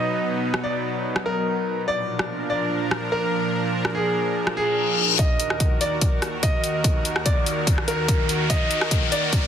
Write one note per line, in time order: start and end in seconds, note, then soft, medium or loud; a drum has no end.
0.00 1.85 B2 medium
0.00 1.85 F#3 medium
0.00 1.85 B3 medium
0.00 1.85 D#4 medium
0.00 0.56 D#5 medium
0.54 cross-stick medium
0.64 1.18 D5 medium
1.16 cross-stick medium
1.26 1.80 A#4 medium
1.88 5.16 A#2 medium
1.88 5.16 F3 medium
1.88 5.16 D4 medium
1.88 5.16 A#4 medium
1.88 2.42 D5 loud
2.19 cross-stick medium
2.50 3.04 D5 medium
2.91 cross-stick medium
3.12 3.87 A#4 loud
3.85 cross-stick medium
3.95 4.49 G#4 medium
4.36 reverse cymbal medium
4.47 cross-stick medium
4.57 5.11 G#4 loud
5.19 9.47 D#2 medium
5.19 9.47 D#3 medium
5.19 9.47 F#4 medium
5.19 9.47 A#4 medium
5.19 5.73 D#5 medium
5.19 kick loud
5.19 closed hi-hat medium
5.19 riser medium
5.40 closed hi-hat medium
5.50 cross-stick medium
5.60 kick medium
5.60 closed hi-hat medium
5.81 6.35 D5 medium
5.81 closed hi-hat medium
6.01 kick medium
6.01 closed hi-hat medium
6.22 cross-stick medium
6.22 closed hi-hat medium
6.43 7.18 D#5 loud
6.43 kick loud
6.43 closed hi-hat medium
6.64 closed hi-hat medium
6.84 kick medium
6.84 closed hi-hat medium
7.05 closed hi-hat medium
7.16 cross-stick medium
7.26 7.80 D5 medium
7.26 kick medium
7.26 closed hi-hat medium
7.46 closed hi-hat medium
7.67 kick loud
7.67 closed hi-hat medium
7.78 cross-stick medium
7.88 8.42 A#4 loud
7.88 closed hi-hat medium
8.08 kick loud
8.08 closed hi-hat medium
8.29 closed hi-hat medium
8.50 9.04 D#5 loud
8.50 kick medium
8.50 closed hi-hat medium
8.71 closed hi-hat medium
8.81 cross-stick medium
8.91 kick medium
8.91 closed hi-hat medium
9.12 9.47 D5 medium
9.12 closed hi-hat medium
9.33 kick loud
9.33 closed hi-hat medium